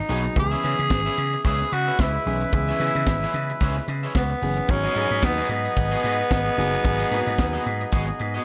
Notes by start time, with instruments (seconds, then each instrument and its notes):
Already playing: grand piano F#3 B3 D#4 G#4, tenor saxophone D#4
0.09 slap bass B1, grand piano F#3 B3 D#4 G#4, clean electric guitar B3 F#4 G#4 D#5, open hi-hat
0.24 muted clean electric guitar stroke, closed hi-hat
0.36 slap bass C#2, grand piano E3 B3 C#4 G#4, tenor saxophone G#4, muted clean electric guitar stroke, kick, closed hi-hat
0.51 clean electric guitar C#4 G#4 B4 E5, closed hi-hat
0.63 slap bass C#3, grand piano E3 B3 C#4 G#4, clean electric guitar C#4 G#4 B4 E5, closed hi-hat
0.78 slap bass C#3, muted clean electric guitar stroke, closed hi-hat
0.90 slap bass G#1, muted clean electric guitar stroke, kick, snare
1.06 clean electric guitar C#4 G#4 B4 E5, closed hi-hat
1.18 slap bass C#3, muted clean electric guitar stroke, closed hi-hat
1.33 muted clean electric guitar stroke, closed hi-hat
1.44 slap bass C#2, horn section G#3 E4 B4, clean electric guitar C#4 G#4 B4 E5, tenor saxophone G#4, kick, closed hi-hat
1.60 muted clean electric guitar stroke, snare, closed hi-hat
1.72 slap bass C#3, tenor saxophone F#4, muted clean electric guitar stroke, closed hi-hat
1.87 clean electric guitar C#4 G#4 B4 E5, closed hi-hat
1.99 slap bass C#2, tenor saxophone E4, muted clean electric guitar stroke, kick, snare
2.15 muted clean electric guitar stroke
2.25 slap bass B1, grand piano E3 B3 C#4 G#4, open hi-hat
2.41 muted clean electric guitar stroke, closed hi-hat
2.53 slap bass C#2, grand piano E3 B3 C#4 G#4, tenor saxophone E4, muted clean electric guitar stroke, kick, closed hi-hat
2.68 clean electric guitar C#4 G#4 B4 E5, closed hi-hat
2.80 slap bass C#3, grand piano E3 B3 C#4 G#4, clean electric guitar C#4 G#4 B4 E5, closed hi-hat
2.95 slap bass C#3, muted clean electric guitar stroke, closed hi-hat
3.07 slap bass G#1, muted clean electric guitar stroke, kick, snare
3.22 clean electric guitar C#4 G#4 B4 E5, closed hi-hat
3.34 slap bass C#3, muted clean electric guitar stroke, closed hi-hat
3.49 muted clean electric guitar stroke, closed hi-hat
3.60 slap bass C#2, clean electric guitar C#4 G#4 B4 E5, kick, closed hi-hat
3.77 muted clean electric guitar stroke, snare
3.88 slap bass C#3, muted clean electric guitar stroke, closed hi-hat
4.03 clean electric guitar C#4 G#4 B4 E5, closed hi-hat
4.15 slap bass C#2, tenor saxophone B3, muted clean electric guitar stroke, kick, snare
4.30 muted clean electric guitar stroke, closed hi-hat
4.41 slap bass F#1, grand piano E3 B3 C#4 G#4, open hi-hat
4.57 muted clean electric guitar stroke, closed hi-hat
4.68 slap bass G#1, grand piano F#3 B3 D#4 G#4, horn section B3 G#4 D#5, tenor saxophone C#4, muted clean electric guitar stroke, kick, closed hi-hat
4.84 clean electric guitar B3 F#4 G#4 D#5
4.95 slap bass G#2, grand piano F#3 B3 D#4 G#4, clean electric guitar B3 F#4 G#4 D#5, closed hi-hat
5.11 slap bass G#2, muted clean electric guitar stroke, closed hi-hat
5.23 slap bass D#2, tenor saxophone B3, muted clean electric guitar stroke, kick, snare
5.38 clean electric guitar B3 F#4 G#4 D#5
5.49 slap bass G#2, tenor saxophone B3, muted clean electric guitar stroke, closed hi-hat
5.65 muted clean electric guitar stroke, closed hi-hat
5.76 slap bass G#1, muted clean electric guitar stroke, kick, closed hi-hat
5.91 clean electric guitar B3 F#4 G#4 D#5
6.03 slap bass G#2, clean electric guitar B3 F#4 G#4 D#5, closed hi-hat
6.18 muted clean electric guitar stroke, closed hi-hat
6.30 slap bass G#1, muted clean electric guitar stroke, kick, snare
6.46 muted clean electric guitar stroke
6.57 slap bass F#1, grand piano F#3 B3 D#4 G#4, open hi-hat
6.72 muted clean electric guitar stroke, closed hi-hat
6.84 slap bass G#1, grand piano F#3 B3 D#4 G#4, muted clean electric guitar stroke, kick, closed hi-hat
6.99 clean electric guitar B3 F#4 G#4 D#5, closed hi-hat
7.11 slap bass G#2, grand piano F#3 A#3 D#4 G#4, clean electric guitar B3 F#4 G#4 D#5, closed hi-hat
7.18 grand piano B3
7.27 slap bass G#2, muted clean electric guitar stroke, closed hi-hat
7.38 slap bass D#2, muted clean electric guitar stroke, kick, snare
7.53 clean electric guitar B3 F#4 G#4 D#5, closed hi-hat
7.65 slap bass G#2, muted clean electric guitar stroke, closed hi-hat
7.81 muted clean electric guitar stroke, closed hi-hat
7.92 slap bass G#1, clean electric guitar B3 F#4 G#4 D#5, kick, closed hi-hat
8.08 muted clean electric guitar stroke, closed hi-hat
8.19 slap bass G#2, muted clean electric guitar stroke, closed hi-hat
8.34 clean electric guitar B3 F#4 G#4 D#5, closed hi-hat